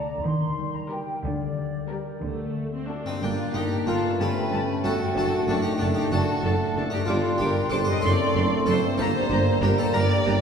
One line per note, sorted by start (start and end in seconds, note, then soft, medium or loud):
0.00 0.27 D3 soft
0.00 0.16 A3 soft
0.00 0.27 A3 soft
0.00 0.17 D4 soft
0.00 0.27 D4 soft
0.00 0.27 A4 soft
0.00 0.16 D5 soft
0.00 0.27 D5 soft
0.00 0.24 A#5 medium
0.24 1.05 D#2 soft
0.24 1.26 D#3 soft
0.24 1.05 D#3 medium
0.24 0.74 C6 medium
0.58 1.56 G3 soft
0.75 0.91 A#5 medium
0.90 1.15 G3 soft
0.90 1.89 G4 soft
0.90 1.15 G4 soft
0.90 1.15 A#4 soft
0.90 1.89 A#4 soft
0.90 1.23 G5 medium
1.23 2.05 D2 medium
1.23 2.04 D3 medium
1.23 2.23 D3 soft
1.23 2.22 D5 medium
1.57 2.26 G3 soft
1.89 2.15 G3 soft
1.89 2.26 G4 soft
1.89 2.15 G4 soft
1.89 2.26 A#4 soft
1.89 2.16 A#4 soft
2.23 3.04 D2 soft
2.23 3.03 D3 medium
2.23 3.25 D3 soft
2.23 2.69 A3 soft
2.56 3.25 A3 soft
2.73 2.89 C4 soft
2.88 3.22 D4 soft
2.88 3.25 F#4 soft
2.88 3.05 F#4 soft
2.88 3.14 A4 soft
2.88 3.25 A4 soft
3.04 4.00 G2 soft
3.04 3.21 C4 soft
3.04 3.13 D#4 soft
3.08 4.15 A#3 soft
3.13 4.18 D4 soft
3.17 5.17 G4 soft
3.22 3.31 G1 medium
3.22 3.36 G1 medium
3.22 3.30 G2 soft
3.22 4.15 A#3 soft
3.22 4.21 A#3 soft
3.22 3.30 A#3 soft
3.22 4.16 D4 soft
3.22 3.53 D4 soft
3.22 4.21 D4 soft
3.22 3.54 F4 medium
3.22 3.30 A#4 soft
3.22 3.30 G5 soft
3.54 3.68 G1 soft
3.54 3.64 G1 soft
3.54 3.62 G2 soft
3.54 3.62 A#3 soft
3.54 3.85 D#4 medium
3.54 3.87 G4 medium
3.54 3.62 A#4 soft
3.54 3.63 G5 soft
3.87 4.01 G1 soft
3.87 3.96 G1 soft
3.87 3.95 G2 soft
3.87 3.95 A#3 soft
3.87 4.17 F4 medium
3.87 4.19 A4 medium
3.87 3.95 A#4 soft
3.87 3.96 G5 soft
4.01 5.10 G2 soft
4.06 5.02 A3 soft
4.10 5.14 C#4 soft
4.15 5.11 A4 soft
4.19 4.33 G1 soft
4.19 4.29 G1 soft
4.19 4.27 G2 medium
4.19 7.06 A3 medium
4.19 7.08 A3 medium
4.19 5.16 C#4 soft
4.19 4.28 C#4 soft
4.19 4.81 G4 medium
4.19 4.28 A4 soft
4.19 4.83 B4 medium
4.19 6.08 G5 medium
4.19 4.27 A5 soft
4.51 4.65 G1 soft
4.51 4.61 G1 soft
4.51 4.59 G2 soft
4.51 4.59 C#4 soft
4.51 4.59 A4 soft
4.51 4.61 A5 soft
4.83 4.97 G1 soft
4.83 4.93 G1 medium
4.83 4.92 G2 soft
4.83 4.91 C#4 soft
4.83 5.14 F#4 medium
4.83 5.15 A4 medium
4.83 4.91 A4 soft
4.83 4.92 A5 soft
4.98 7.02 F#2 soft
5.03 7.04 A3 soft
5.07 6.92 D4 soft
5.12 5.24 D4 medium
5.12 7.08 A4 soft
5.12 5.23 A4 soft
5.16 5.29 F#1 medium
5.16 5.25 F#1 medium
5.16 5.24 F#2 medium
5.16 8.04 D4 soft
5.16 8.05 D4 soft
5.16 5.47 F#4 medium
5.16 5.48 A4 medium
5.16 5.25 A5 soft
5.47 5.61 F#1 medium
5.47 5.57 F#1 medium
5.47 5.56 F#2 soft
5.47 5.55 D4 soft
5.47 5.63 D4 medium
5.47 5.64 F#4 medium
5.47 5.55 A4 soft
5.47 5.57 A5 soft
5.62 5.78 D#4 medium
5.62 5.71 G4 medium
5.78 5.93 F#1 soft
5.78 5.89 F#1 medium
5.78 5.88 F#2 medium
5.78 5.94 D4 medium
5.78 5.87 D4 soft
5.78 5.86 F#4 medium
5.78 5.88 A4 soft
5.78 5.90 A5 soft
5.94 6.10 D#4 medium
5.94 6.12 G4 medium
6.11 6.25 F#1 medium
6.11 6.20 F#1 medium
6.11 6.19 F#2 medium
6.11 6.20 D4 medium
6.11 6.88 F#4 medium
6.11 6.90 A4 medium
6.11 6.20 A4 soft
6.11 7.06 A5 medium
6.11 6.21 A5 soft
6.44 6.57 F#1 medium
6.44 6.52 F#1 medium
6.44 6.52 F#2 medium
6.44 6.52 D4 soft
6.44 6.52 A4 soft
6.44 6.54 A5 soft
6.75 6.84 F#1 medium
6.75 6.89 F#1 medium
6.75 6.83 F#2 medium
6.75 6.85 D4 soft
6.75 6.84 A4 soft
6.75 6.85 A5 soft
6.89 7.97 G2 soft
6.89 7.06 D#4 medium
6.89 6.99 G4 medium
6.93 7.93 D4 soft
6.98 8.01 G4 soft
7.05 7.16 G1 medium
7.05 7.21 G1 medium
7.05 7.16 G2 medium
7.05 8.05 G3 medium
7.05 8.02 G3 soft
7.05 7.15 D4 medium
7.05 7.36 F4 medium
7.05 7.16 G4 medium
7.05 7.39 A4 medium
7.05 8.71 C6 medium
7.05 7.16 D6 medium
7.38 7.52 G1 medium
7.38 7.48 G1 medium
7.38 7.48 G2 medium
7.38 7.48 D4 soft
7.38 7.69 G4 medium
7.38 7.48 G4 medium
7.38 7.71 A#4 medium
7.38 7.49 D6 soft
7.70 7.79 G1 medium
7.70 7.85 G1 medium
7.70 7.79 G2 medium
7.70 7.81 D4 medium
7.70 7.81 G4 medium
7.70 7.86 A4 medium
7.70 7.78 C5 medium
7.70 7.78 D6 medium
7.84 8.92 F#2 medium
7.84 8.01 C5 medium
7.89 8.95 C4 soft
7.89 8.04 D#5 medium
7.94 8.88 D4 soft
7.99 8.99 A4 soft
7.99 8.62 A4 medium
7.99 8.11 A4 medium
8.03 8.17 F#1 medium
8.03 8.12 F#1 medium
8.03 8.11 F#2 medium
8.03 8.98 A3 medium
8.03 9.00 A3 medium
8.03 8.99 C4 medium
8.03 9.00 C4 medium
8.03 8.11 D4 medium
8.03 8.66 D5 medium
8.03 8.12 C6 medium
8.35 8.48 F#1 medium
8.35 8.44 F#1 medium
8.35 8.44 F#2 medium
8.35 8.43 D4 medium
8.35 8.43 A4 medium
8.35 8.44 C6 medium
8.66 8.75 F#1 medium
8.66 8.81 F#1 medium
8.66 8.74 F#2 medium
8.66 8.75 D4 medium
8.66 8.96 A4 medium
8.66 8.75 A4 medium
8.66 8.98 C5 medium
8.66 8.77 C6 medium
8.81 10.41 G2 medium
8.85 10.41 A#3 soft
8.89 10.41 D4 soft
8.94 9.06 D4 medium
8.94 10.41 G4 soft
8.94 9.06 G4 medium
8.94 9.58 A4 medium
8.98 9.07 G1 medium
8.98 9.13 G1 medium
8.98 9.06 G2 medium
8.98 10.41 G3 medium
8.98 10.41 A#3 medium
8.98 9.61 C5 loud
8.98 9.94 A#5 medium
8.98 9.07 A#5 medium
9.29 9.38 G1 medium
9.29 9.45 G1 medium
9.29 9.38 G2 medium
9.29 9.37 D4 medium
9.29 9.37 G4 medium
9.29 9.40 A#5 medium
9.61 9.70 G1 medium
9.61 9.77 G1 medium
9.61 9.69 G2 medium
9.61 9.69 D4 medium
9.61 9.69 G4 medium
9.61 9.78 G4 medium
9.61 9.79 A#4 medium
9.61 9.70 A#5 medium
9.78 9.93 A4 medium
9.78 9.95 C5 medium
9.93 10.03 G1 medium
9.93 10.09 G1 medium
9.93 10.02 G2 medium
9.93 10.01 D4 medium
9.93 10.02 G4 medium
9.93 10.41 A#4 medium
9.93 10.41 D5 medium
9.93 10.26 G5 medium
9.93 10.01 A#5 medium
10.25 10.35 G1 medium
10.25 10.40 G1 medium
10.25 10.34 G2 medium
10.25 10.34 D4 medium
10.25 10.34 G4 medium
10.25 10.41 A#5 medium
10.25 10.34 A#5 medium